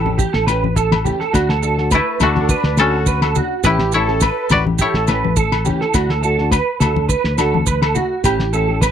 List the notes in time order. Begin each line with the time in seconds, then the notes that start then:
Already playing: A1 A4
0.05 A3 C#4 G4, high conga
0.18 G4, kick, high conga, maracas
0.33 A1 A4, snare
0.46 A3 C#4 G4 B4, muted nylon-string guitar stroke, snare, low agogo, maracas
0.64 high conga
0.76 A4, kick, snare, maracas
0.91 snare, high conga, low agogo
1.04 E3 A3 C#4 G4, high conga, low conga, maracas
1.20 A4, snare
1.33 D2 A3 D4 F#4, kick, snare, low agogo, maracas
1.49 A4, snare
1.62 A3 D4 F#4 A4, maracas
1.78 D4 F#4, snare
1.91 A3 B4, kick, snare, low agogo, maracas
1.95 A3 E4
2.20 D2 A3 D4 F#4 A4, snare, low conga, low agogo, maracas
2.35 D4 F#4, snare, high conga
2.49 B4, kick, maracas
2.64 D2, snare
2.77 A3 C#4 D4 F#4 A4, snare, low agogo, maracas
3.06 B4, kick, maracas
3.22 A4, snare, low agogo
3.35 D4 F#4, muted nylon-string guitar stroke, low conga, maracas
3.64 A1 E3 A3 C#4 E4 G4 B4, kick, snare, low agogo, maracas
3.79 snare
3.92 E3 A3 C#4 E4 G4 A4 C#5, maracas
4.08 A3 C#4 G4, snare
4.21 B4, kick, snare, low agogo, maracas
4.49 A1 E3 A3 C#4 F#4 G4 B4 D5, muted clean electric guitar stroke, snare, low conga, low agogo, maracas
4.65 A3 G4, muted nylon-string guitar stroke, high conga
4.78 E4 G4 C#5, kick, maracas
4.83 A4
4.94 A1 A4, snare
5.07 E3 A3 C#4 G4 B4, snare, low agogo, maracas
5.25 high conga
5.36 A4, kick, maracas
5.52 snare, low agogo
5.65 E3 A3 C#4 G4, low conga, maracas
5.81 A4, snare
5.94 D2 A3 D4 F#4, kick, snare, low agogo, maracas
6.09 A4, snare
6.22 A3 D4 F#4 A4, maracas
6.38 D4 F#4, snare
6.51 B4, kick, snare, low agogo, maracas
6.80 D2 A3 D4 F#4 A4, snare, low conga, low agogo, maracas
6.96 D4, muted nylon-string guitar stroke, high conga
7.09 B4, kick, maracas
7.24 D2, snare
7.38 A3 D4 F#4 A4, snare, low agogo, maracas
7.54 high conga
7.66 B4, kick, maracas
7.82 A4, snare, low agogo
7.95 A3 F#4, low conga, maracas
8.24 A1 E3 A3 C#4 G4, muted nylon-string guitar stroke, kick, snare, low agogo, maracas
8.39 snare
8.53 E3 A3 C#4 G4 A4, maracas
8.68 A3 C#4 G4
8.81 B4, kick, snare, low agogo, maracas